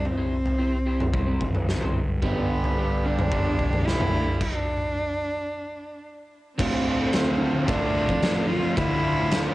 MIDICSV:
0, 0, Header, 1, 9, 480
1, 0, Start_track
1, 0, Tempo, 545455
1, 40, Time_signature, 4, 2, 24, 8
1, 8399, End_track
2, 0, Start_track
2, 0, Title_t, "Clean electric guitar"
2, 0, Program_c, 0, 27
2, 153, Note_on_c, 0, 72, 87
2, 156, Note_on_c, 0, 67, 82
2, 158, Note_on_c, 0, 64, 75
2, 162, Note_on_c, 0, 60, 75
2, 312, Note_off_c, 0, 72, 0
2, 313, Note_off_c, 0, 67, 0
2, 314, Note_off_c, 0, 64, 0
2, 316, Note_off_c, 0, 60, 0
2, 513, Note_on_c, 0, 60, 65
2, 515, Note_on_c, 0, 64, 62
2, 518, Note_on_c, 0, 67, 67
2, 524, Note_on_c, 0, 72, 72
2, 671, Note_off_c, 0, 60, 0
2, 672, Note_off_c, 0, 64, 0
2, 674, Note_off_c, 0, 67, 0
2, 677, Note_off_c, 0, 72, 0
2, 753, Note_on_c, 0, 60, 75
2, 759, Note_on_c, 0, 64, 80
2, 761, Note_on_c, 0, 67, 87
2, 763, Note_on_c, 0, 72, 85
2, 911, Note_off_c, 0, 60, 0
2, 914, Note_off_c, 0, 64, 0
2, 915, Note_off_c, 0, 67, 0
2, 916, Note_off_c, 0, 72, 0
2, 990, Note_on_c, 0, 60, 63
2, 995, Note_on_c, 0, 64, 73
2, 998, Note_on_c, 0, 67, 69
2, 1003, Note_on_c, 0, 72, 76
2, 1098, Note_off_c, 0, 72, 0
2, 1102, Note_off_c, 0, 67, 0
2, 1108, Note_off_c, 0, 64, 0
2, 1109, Note_off_c, 0, 60, 0
2, 1109, Note_on_c, 0, 72, 85
2, 1113, Note_on_c, 0, 67, 84
2, 1118, Note_on_c, 0, 64, 75
2, 1120, Note_on_c, 0, 60, 72
2, 1269, Note_off_c, 0, 72, 0
2, 1271, Note_off_c, 0, 67, 0
2, 1274, Note_off_c, 0, 64, 0
2, 1275, Note_off_c, 0, 60, 0
2, 1593, Note_on_c, 0, 72, 89
2, 1596, Note_on_c, 0, 67, 84
2, 1598, Note_on_c, 0, 64, 75
2, 1602, Note_on_c, 0, 60, 76
2, 1751, Note_off_c, 0, 72, 0
2, 1752, Note_off_c, 0, 67, 0
2, 1753, Note_off_c, 0, 64, 0
2, 1755, Note_off_c, 0, 60, 0
2, 2077, Note_on_c, 0, 67, 93
2, 2080, Note_on_c, 0, 62, 91
2, 2084, Note_on_c, 0, 59, 75
2, 2087, Note_on_c, 0, 55, 75
2, 2233, Note_off_c, 0, 67, 0
2, 2234, Note_off_c, 0, 62, 0
2, 2236, Note_off_c, 0, 59, 0
2, 2238, Note_off_c, 0, 55, 0
2, 2438, Note_on_c, 0, 55, 69
2, 2442, Note_on_c, 0, 59, 76
2, 2443, Note_on_c, 0, 62, 68
2, 2450, Note_on_c, 0, 67, 79
2, 2593, Note_off_c, 0, 55, 0
2, 2595, Note_off_c, 0, 59, 0
2, 2596, Note_off_c, 0, 62, 0
2, 2599, Note_off_c, 0, 67, 0
2, 2676, Note_on_c, 0, 55, 87
2, 2682, Note_on_c, 0, 59, 85
2, 2684, Note_on_c, 0, 62, 82
2, 2687, Note_on_c, 0, 67, 95
2, 2832, Note_off_c, 0, 55, 0
2, 2835, Note_off_c, 0, 59, 0
2, 2837, Note_off_c, 0, 62, 0
2, 2838, Note_off_c, 0, 67, 0
2, 2914, Note_on_c, 0, 55, 70
2, 2921, Note_on_c, 0, 59, 73
2, 2922, Note_on_c, 0, 62, 66
2, 2925, Note_on_c, 0, 67, 81
2, 3022, Note_off_c, 0, 67, 0
2, 3024, Note_off_c, 0, 62, 0
2, 3031, Note_off_c, 0, 59, 0
2, 3032, Note_on_c, 0, 67, 89
2, 3033, Note_off_c, 0, 55, 0
2, 3035, Note_on_c, 0, 62, 81
2, 3042, Note_on_c, 0, 59, 83
2, 3044, Note_on_c, 0, 55, 72
2, 3191, Note_off_c, 0, 67, 0
2, 3192, Note_off_c, 0, 62, 0
2, 3196, Note_off_c, 0, 55, 0
2, 3196, Note_off_c, 0, 59, 0
2, 3511, Note_on_c, 0, 67, 93
2, 3513, Note_on_c, 0, 62, 86
2, 3515, Note_on_c, 0, 59, 75
2, 3521, Note_on_c, 0, 55, 68
2, 3670, Note_off_c, 0, 67, 0
2, 3671, Note_off_c, 0, 62, 0
2, 3673, Note_off_c, 0, 59, 0
2, 3675, Note_off_c, 0, 55, 0
2, 8399, End_track
3, 0, Start_track
3, 0, Title_t, "Cello"
3, 0, Program_c, 1, 42
3, 49, Note_on_c, 1, 60, 93
3, 1482, Note_off_c, 1, 60, 0
3, 1959, Note_on_c, 1, 59, 86
3, 2680, Note_on_c, 1, 62, 94
3, 2694, Note_off_c, 1, 59, 0
3, 3399, Note_on_c, 1, 64, 111
3, 3412, Note_off_c, 1, 62, 0
3, 3873, Note_on_c, 1, 62, 96
3, 3887, Note_off_c, 1, 64, 0
3, 5317, Note_off_c, 1, 62, 0
3, 5786, Note_on_c, 1, 60, 91
3, 6746, Note_on_c, 1, 62, 101
3, 6759, Note_off_c, 1, 60, 0
3, 7464, Note_on_c, 1, 65, 108
3, 7477, Note_off_c, 1, 62, 0
3, 7704, Note_on_c, 1, 64, 108
3, 7717, Note_off_c, 1, 65, 0
3, 8399, Note_off_c, 1, 64, 0
3, 8399, End_track
4, 0, Start_track
4, 0, Title_t, "Distorted electric guitar"
4, 0, Program_c, 2, 30
4, 6154, Note_on_c, 2, 65, 75
4, 6164, Note_on_c, 2, 57, 72
4, 6176, Note_on_c, 2, 50, 59
4, 6279, Note_off_c, 2, 50, 0
4, 6285, Note_off_c, 2, 57, 0
4, 6290, Note_off_c, 2, 65, 0
4, 6741, Note_on_c, 2, 45, 73
4, 6750, Note_on_c, 2, 50, 69
4, 6758, Note_on_c, 2, 57, 74
4, 6761, Note_on_c, 2, 65, 83
4, 6975, Note_off_c, 2, 45, 0
4, 6983, Note_off_c, 2, 50, 0
4, 6990, Note_off_c, 2, 57, 0
4, 6996, Note_off_c, 2, 65, 0
4, 8064, Note_on_c, 2, 65, 71
4, 8080, Note_on_c, 2, 57, 63
4, 8091, Note_on_c, 2, 50, 57
4, 8193, Note_off_c, 2, 50, 0
4, 8197, Note_off_c, 2, 57, 0
4, 8200, Note_off_c, 2, 65, 0
4, 8399, End_track
5, 0, Start_track
5, 0, Title_t, "Overdriven electric guitar"
5, 0, Program_c, 3, 29
5, 1954, Note_on_c, 3, 43, 89
5, 1960, Note_on_c, 3, 50, 98
5, 1965, Note_on_c, 3, 55, 109
5, 2418, Note_off_c, 3, 43, 0
5, 2426, Note_off_c, 3, 50, 0
5, 2428, Note_off_c, 3, 55, 0
5, 2428, Note_on_c, 3, 43, 81
5, 2437, Note_on_c, 3, 50, 80
5, 2439, Note_on_c, 3, 55, 86
5, 2658, Note_off_c, 3, 43, 0
5, 2658, Note_off_c, 3, 50, 0
5, 2668, Note_off_c, 3, 55, 0
5, 2669, Note_on_c, 3, 43, 79
5, 2669, Note_on_c, 3, 50, 80
5, 2678, Note_on_c, 3, 55, 89
5, 2888, Note_off_c, 3, 43, 0
5, 2897, Note_off_c, 3, 50, 0
5, 2899, Note_off_c, 3, 55, 0
5, 2899, Note_on_c, 3, 43, 94
5, 2908, Note_on_c, 3, 50, 94
5, 2909, Note_on_c, 3, 55, 96
5, 3368, Note_off_c, 3, 43, 0
5, 3376, Note_off_c, 3, 50, 0
5, 3378, Note_on_c, 3, 43, 75
5, 3379, Note_off_c, 3, 55, 0
5, 3386, Note_on_c, 3, 50, 80
5, 3390, Note_on_c, 3, 55, 88
5, 3609, Note_off_c, 3, 43, 0
5, 3616, Note_off_c, 3, 50, 0
5, 3620, Note_on_c, 3, 43, 85
5, 3622, Note_off_c, 3, 55, 0
5, 3627, Note_on_c, 3, 50, 92
5, 3632, Note_on_c, 3, 55, 95
5, 3854, Note_off_c, 3, 43, 0
5, 3858, Note_off_c, 3, 50, 0
5, 3861, Note_off_c, 3, 55, 0
5, 5793, Note_on_c, 3, 38, 84
5, 5796, Note_on_c, 3, 45, 92
5, 5801, Note_on_c, 3, 50, 97
5, 5809, Note_on_c, 3, 57, 93
5, 5812, Note_on_c, 3, 65, 97
5, 6025, Note_off_c, 3, 45, 0
5, 6035, Note_on_c, 3, 45, 75
5, 6039, Note_off_c, 3, 50, 0
5, 6042, Note_on_c, 3, 50, 74
5, 6046, Note_off_c, 3, 57, 0
5, 6050, Note_on_c, 3, 57, 86
5, 6051, Note_off_c, 3, 65, 0
5, 6055, Note_on_c, 3, 65, 86
5, 6263, Note_off_c, 3, 38, 0
5, 6264, Note_off_c, 3, 45, 0
5, 6267, Note_on_c, 3, 38, 88
5, 6275, Note_on_c, 3, 45, 94
5, 6278, Note_off_c, 3, 50, 0
5, 6281, Note_on_c, 3, 50, 96
5, 6283, Note_off_c, 3, 57, 0
5, 6286, Note_off_c, 3, 65, 0
5, 6287, Note_on_c, 3, 57, 102
5, 6290, Note_on_c, 3, 65, 101
5, 6386, Note_off_c, 3, 65, 0
5, 6394, Note_off_c, 3, 57, 0
5, 6397, Note_on_c, 3, 65, 72
5, 6404, Note_off_c, 3, 50, 0
5, 6405, Note_on_c, 3, 57, 65
5, 6415, Note_on_c, 3, 50, 60
5, 6504, Note_off_c, 3, 45, 0
5, 6510, Note_off_c, 3, 50, 0
5, 6515, Note_on_c, 3, 45, 66
5, 6516, Note_off_c, 3, 57, 0
5, 6520, Note_on_c, 3, 50, 79
5, 6525, Note_off_c, 3, 65, 0
5, 6526, Note_on_c, 3, 57, 74
5, 6535, Note_on_c, 3, 65, 83
5, 6628, Note_off_c, 3, 65, 0
5, 6633, Note_off_c, 3, 38, 0
5, 6637, Note_off_c, 3, 57, 0
5, 6639, Note_on_c, 3, 65, 76
5, 6648, Note_off_c, 3, 50, 0
5, 6648, Note_on_c, 3, 57, 65
5, 6658, Note_on_c, 3, 50, 61
5, 6861, Note_off_c, 3, 65, 0
5, 6868, Note_off_c, 3, 57, 0
5, 6872, Note_on_c, 3, 65, 65
5, 6878, Note_off_c, 3, 45, 0
5, 6879, Note_off_c, 3, 50, 0
5, 6879, Note_on_c, 3, 57, 66
5, 6890, Note_on_c, 3, 50, 62
5, 6988, Note_off_c, 3, 50, 0
5, 6990, Note_on_c, 3, 45, 69
5, 6993, Note_off_c, 3, 57, 0
5, 6999, Note_off_c, 3, 65, 0
5, 6999, Note_on_c, 3, 50, 76
5, 7004, Note_on_c, 3, 57, 71
5, 7010, Note_on_c, 3, 65, 79
5, 7096, Note_off_c, 3, 65, 0
5, 7106, Note_off_c, 3, 57, 0
5, 7106, Note_on_c, 3, 65, 67
5, 7111, Note_off_c, 3, 50, 0
5, 7117, Note_on_c, 3, 57, 66
5, 7122, Note_on_c, 3, 50, 55
5, 7216, Note_off_c, 3, 45, 0
5, 7221, Note_off_c, 3, 50, 0
5, 7223, Note_off_c, 3, 57, 0
5, 7223, Note_on_c, 3, 38, 95
5, 7227, Note_on_c, 3, 45, 91
5, 7228, Note_off_c, 3, 65, 0
5, 7231, Note_on_c, 3, 50, 104
5, 7233, Note_on_c, 3, 57, 100
5, 7238, Note_on_c, 3, 65, 98
5, 7450, Note_off_c, 3, 45, 0
5, 7461, Note_on_c, 3, 45, 66
5, 7464, Note_off_c, 3, 50, 0
5, 7467, Note_off_c, 3, 57, 0
5, 7469, Note_off_c, 3, 65, 0
5, 7474, Note_on_c, 3, 50, 77
5, 7477, Note_on_c, 3, 57, 75
5, 7480, Note_on_c, 3, 65, 77
5, 7580, Note_off_c, 3, 65, 0
5, 7590, Note_on_c, 3, 65, 73
5, 7593, Note_off_c, 3, 57, 0
5, 7600, Note_off_c, 3, 50, 0
5, 7604, Note_on_c, 3, 57, 70
5, 7611, Note_on_c, 3, 50, 54
5, 7699, Note_off_c, 3, 38, 0
5, 7703, Note_off_c, 3, 45, 0
5, 7710, Note_off_c, 3, 50, 0
5, 7710, Note_on_c, 3, 38, 89
5, 7711, Note_off_c, 3, 57, 0
5, 7714, Note_on_c, 3, 45, 89
5, 7715, Note_off_c, 3, 65, 0
5, 7721, Note_on_c, 3, 50, 91
5, 7722, Note_on_c, 3, 57, 96
5, 7726, Note_on_c, 3, 65, 102
5, 7933, Note_off_c, 3, 45, 0
5, 7943, Note_off_c, 3, 50, 0
5, 7944, Note_on_c, 3, 45, 83
5, 7951, Note_off_c, 3, 57, 0
5, 7952, Note_off_c, 3, 65, 0
5, 7953, Note_on_c, 3, 50, 81
5, 7961, Note_on_c, 3, 57, 85
5, 7963, Note_on_c, 3, 65, 85
5, 8183, Note_off_c, 3, 38, 0
5, 8185, Note_off_c, 3, 45, 0
5, 8191, Note_off_c, 3, 50, 0
5, 8193, Note_on_c, 3, 38, 92
5, 8196, Note_off_c, 3, 57, 0
5, 8196, Note_on_c, 3, 45, 91
5, 8197, Note_off_c, 3, 65, 0
5, 8202, Note_on_c, 3, 50, 89
5, 8207, Note_on_c, 3, 57, 101
5, 8208, Note_on_c, 3, 65, 100
5, 8303, Note_off_c, 3, 65, 0
5, 8311, Note_off_c, 3, 57, 0
5, 8314, Note_on_c, 3, 65, 80
5, 8321, Note_off_c, 3, 50, 0
5, 8322, Note_on_c, 3, 57, 69
5, 8332, Note_on_c, 3, 50, 55
5, 8399, Note_off_c, 3, 38, 0
5, 8399, Note_off_c, 3, 45, 0
5, 8399, Note_off_c, 3, 50, 0
5, 8399, Note_off_c, 3, 57, 0
5, 8399, Note_off_c, 3, 65, 0
5, 8399, End_track
6, 0, Start_track
6, 0, Title_t, "Picked electric bass"
6, 0, Program_c, 4, 34
6, 1000, Note_on_c, 4, 36, 94
6, 1225, Note_off_c, 4, 36, 0
6, 1242, Note_on_c, 4, 31, 77
6, 1924, Note_off_c, 4, 31, 0
6, 1959, Note_on_c, 4, 31, 93
6, 2883, Note_off_c, 4, 31, 0
6, 2919, Note_on_c, 4, 31, 102
6, 3145, Note_off_c, 4, 31, 0
6, 3158, Note_on_c, 4, 28, 89
6, 3611, Note_off_c, 4, 28, 0
6, 3640, Note_on_c, 4, 38, 87
6, 3752, Note_off_c, 4, 38, 0
6, 5804, Note_on_c, 4, 38, 90
6, 6727, Note_off_c, 4, 38, 0
6, 6761, Note_on_c, 4, 38, 102
6, 7100, Note_off_c, 4, 38, 0
6, 7123, Note_on_c, 4, 41, 78
6, 7687, Note_off_c, 4, 41, 0
6, 7719, Note_on_c, 4, 38, 94
6, 8399, Note_off_c, 4, 38, 0
6, 8399, End_track
7, 0, Start_track
7, 0, Title_t, "Muted clean electric guitar strokes"
7, 1472, Note_on_c, 9, 29, 43
7, 1560, Note_off_c, 9, 29, 0
7, 1836, Note_on_c, 9, 29, 50
7, 1924, Note_off_c, 9, 29, 0
7, 3391, Note_on_c, 9, 29, 44
7, 3479, Note_off_c, 9, 29, 0
7, 3753, Note_on_c, 9, 29, 48
7, 3841, Note_off_c, 9, 29, 0
7, 8399, End_track
8, 0, Start_track
8, 0, Title_t, "Muted distorted electric guitar strokes"
8, 6638, Note_on_c, 9, 29, 53
8, 6726, Note_off_c, 9, 29, 0
8, 7112, Note_on_c, 9, 29, 47
8, 7200, Note_off_c, 9, 29, 0
8, 8399, End_track
9, 0, Start_track
9, 0, Title_t, "Drums"
9, 46, Note_on_c, 9, 43, 73
9, 134, Note_off_c, 9, 43, 0
9, 402, Note_on_c, 9, 43, 79
9, 490, Note_off_c, 9, 43, 0
9, 884, Note_on_c, 9, 43, 82
9, 884, Note_on_c, 9, 47, 72
9, 972, Note_off_c, 9, 43, 0
9, 972, Note_off_c, 9, 47, 0
9, 1000, Note_on_c, 9, 36, 103
9, 1088, Note_off_c, 9, 36, 0
9, 1240, Note_on_c, 9, 36, 71
9, 1246, Note_on_c, 9, 43, 76
9, 1328, Note_off_c, 9, 36, 0
9, 1334, Note_off_c, 9, 43, 0
9, 1362, Note_on_c, 9, 47, 72
9, 1450, Note_off_c, 9, 47, 0
9, 1486, Note_on_c, 9, 38, 74
9, 1574, Note_off_c, 9, 38, 0
9, 1605, Note_on_c, 9, 43, 82
9, 1605, Note_on_c, 9, 47, 74
9, 1693, Note_off_c, 9, 43, 0
9, 1693, Note_off_c, 9, 47, 0
9, 1955, Note_on_c, 9, 43, 75
9, 1957, Note_on_c, 9, 36, 103
9, 2043, Note_off_c, 9, 43, 0
9, 2045, Note_off_c, 9, 36, 0
9, 2323, Note_on_c, 9, 43, 80
9, 2411, Note_off_c, 9, 43, 0
9, 2804, Note_on_c, 9, 43, 74
9, 2804, Note_on_c, 9, 47, 73
9, 2892, Note_off_c, 9, 43, 0
9, 2892, Note_off_c, 9, 47, 0
9, 2918, Note_on_c, 9, 36, 107
9, 3006, Note_off_c, 9, 36, 0
9, 3158, Note_on_c, 9, 36, 67
9, 3161, Note_on_c, 9, 43, 80
9, 3246, Note_off_c, 9, 36, 0
9, 3249, Note_off_c, 9, 43, 0
9, 3280, Note_on_c, 9, 47, 82
9, 3368, Note_off_c, 9, 47, 0
9, 3412, Note_on_c, 9, 38, 78
9, 3500, Note_off_c, 9, 38, 0
9, 3522, Note_on_c, 9, 43, 80
9, 3522, Note_on_c, 9, 47, 78
9, 3610, Note_off_c, 9, 43, 0
9, 3610, Note_off_c, 9, 47, 0
9, 3879, Note_on_c, 9, 36, 94
9, 3879, Note_on_c, 9, 49, 89
9, 3967, Note_off_c, 9, 36, 0
9, 3967, Note_off_c, 9, 49, 0
9, 5801, Note_on_c, 9, 36, 111
9, 5803, Note_on_c, 9, 49, 116
9, 5889, Note_off_c, 9, 36, 0
9, 5891, Note_off_c, 9, 49, 0
9, 6274, Note_on_c, 9, 53, 68
9, 6281, Note_on_c, 9, 38, 109
9, 6362, Note_off_c, 9, 53, 0
9, 6369, Note_off_c, 9, 38, 0
9, 6760, Note_on_c, 9, 36, 112
9, 6760, Note_on_c, 9, 53, 67
9, 6848, Note_off_c, 9, 36, 0
9, 6848, Note_off_c, 9, 53, 0
9, 7119, Note_on_c, 9, 36, 83
9, 7207, Note_off_c, 9, 36, 0
9, 7239, Note_on_c, 9, 53, 65
9, 7246, Note_on_c, 9, 38, 114
9, 7327, Note_off_c, 9, 53, 0
9, 7334, Note_off_c, 9, 38, 0
9, 7718, Note_on_c, 9, 36, 100
9, 7720, Note_on_c, 9, 53, 73
9, 7806, Note_off_c, 9, 36, 0
9, 7808, Note_off_c, 9, 53, 0
9, 8197, Note_on_c, 9, 53, 78
9, 8204, Note_on_c, 9, 38, 114
9, 8285, Note_off_c, 9, 53, 0
9, 8292, Note_off_c, 9, 38, 0
9, 8399, End_track
0, 0, End_of_file